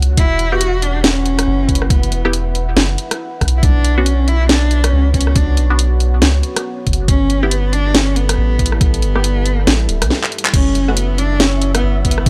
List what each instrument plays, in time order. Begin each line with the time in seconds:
Already playing: sub bass C#2, ambient pad F#4 C#5 F#5
0.02 closed hi-hat
0.17 sub bass E1, ambient pad E4 B4, cello E4, kick, closed hi-hat
0.39 closed hi-hat
0.52 synth stab B3 E4 G4, cello F#4
0.61 closed hi-hat
0.82 cello D4, closed hi-hat
1.04 cello C#4, snare, closed hi-hat
1.26 closed hi-hat
1.39 cross-stick, closed hi-hat
1.47 sub bass F#1
1.69 kick, closed hi-hat
1.75 closed hi-hat
1.82 cross-stick
1.90 cello B3, kick, closed hi-hat
2.03 closed hi-hat
2.12 sub bass E1, closed hi-hat
2.25 synth stab B3 E4 G4, cross-stick
2.33 closed hi-hat
2.55 closed hi-hat
2.77 sub bass F#1, snare, closed hi-hat
2.98 closed hi-hat
3.11 cross-stick, closed hi-hat
3.41 sub bass B1, kick, cross-stick, closed hi-hat
3.48 closed hi-hat
3.57 cello E4
3.63 sub bass B1, ambient pad B3 F#4 C#5, cello D4, kick, closed hi-hat
3.85 closed hi-hat
3.98 synth stab B3 D4 F#4, cello C#4
4.06 closed hi-hat
4.28 cello E4, closed hi-hat
4.49 cello D4, snare, closed hi-hat
4.71 closed hi-hat
4.84 cello C#4, cross-stick, closed hi-hat
4.93 sub bass C#2
5.14 cello C#4, kick, closed hi-hat
5.21 closed hi-hat
5.27 cross-stick
5.36 cello D4, kick, closed hi-hat
5.57 sub bass B1, closed hi-hat
5.70 synth stab B3 D4 F#4
5.79 closed hi-hat
6.00 closed hi-hat
6.22 sub bass C#2, snare, closed hi-hat
6.43 closed hi-hat
6.56 cross-stick, closed hi-hat
6.87 sub bass F#1, kick, closed hi-hat
6.93 closed hi-hat
7.08 sub bass G1, ambient pad G3 E4 A4, cello C#4, kick, closed hi-hat
7.30 closed hi-hat
7.43 cello B3, synth stab B3 E4 G4
7.51 closed hi-hat
7.73 cello D4, closed hi-hat
7.94 cello C#4, snare, closed hi-hat
8.16 cello B3, closed hi-hat
8.29 cross-stick, closed hi-hat
8.38 sub bass A1
8.59 kick, closed hi-hat
8.66 closed hi-hat
8.72 cross-stick
8.81 cello B3, kick, closed hi-hat
8.94 closed hi-hat
9.02 sub bass G1, closed hi-hat
9.15 synth stab B3 E4 G4, cross-stick
9.24 closed hi-hat
9.46 closed hi-hat
9.67 sub bass A1, snare, closed hi-hat
9.89 sub bass D1, closed hi-hat
10.02 sub bass B1, cross-stick, closed hi-hat
10.10 snare
10.23 clap
10.32 closed hi-hat
10.38 closed hi-hat
10.45 clap
10.54 sub bass F#1, cello C#4, synth texture E4 E5, ambient pad F#4 C#5 F#5, kick, closed hi-hat, crash
10.75 closed hi-hat
10.88 synth stab A3 C#4 F#4, cello B3
10.97 closed hi-hat
11.18 cello D4, closed hi-hat
11.40 cello C#4, snare, closed hi-hat
11.62 closed hi-hat
11.75 cello B3, cross-stick, closed hi-hat
11.83 sub bass G1
12.05 cello B3, kick, closed hi-hat
12.11 closed hi-hat
12.18 cross-stick
12.26 cello C#4, kick, closed hi-hat